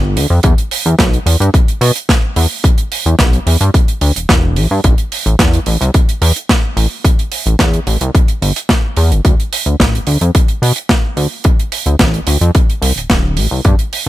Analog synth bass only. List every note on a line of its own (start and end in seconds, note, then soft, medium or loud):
0.00 0.18 G1 loud
0.16 0.27 D2 loud
0.30 0.40 F2 medium
0.44 0.54 E2 loud
0.86 0.95 E2 medium
0.99 1.19 B1 medium
1.26 1.37 E2 medium
1.40 1.50 G2 medium
1.81 1.92 B2 loud
2.36 2.47 E2 medium
3.06 3.15 E2 medium
3.19 3.39 B1 medium
3.47 3.57 E2 medium
3.61 3.70 G2 medium
4.01 4.12 D2 medium
4.16 4.26 E1 soft
4.29 4.58 E1 loud
4.57 4.67 A1 loud
4.71 4.80 G2 medium
4.84 4.95 A1 loud
5.26 5.36 A1 medium
5.39 5.59 E2 medium
5.67 5.77 A1 medium
5.81 5.91 C2 loud
6.22 6.32 E2 loud
6.77 6.87 A1 medium
7.46 7.56 A1 medium
7.60 7.80 E2 medium
7.87 7.97 A1 medium
8.01 8.11 C2 loud
8.42 8.52 G1 medium
8.97 9.13 E2 loud
9.11 9.21 G1 loud
9.25 9.35 D2 loud
9.66 9.76 D2 medium
9.80 10.00 A1 medium
10.07 10.17 D2 medium
10.21 10.31 F2 medium
10.62 10.72 B2 loud
11.17 11.27 D2 medium
11.86 11.96 D2 medium
12.00 12.20 A1 medium
12.27 12.37 D2 medium
12.41 12.51 F2 loud
12.82 12.92 C2 medium
12.96 13.07 D1 soft
13.10 13.38 D1 medium
13.37 13.48 A1 loud
13.51 13.61 C2 medium
13.65 13.75 G2 loud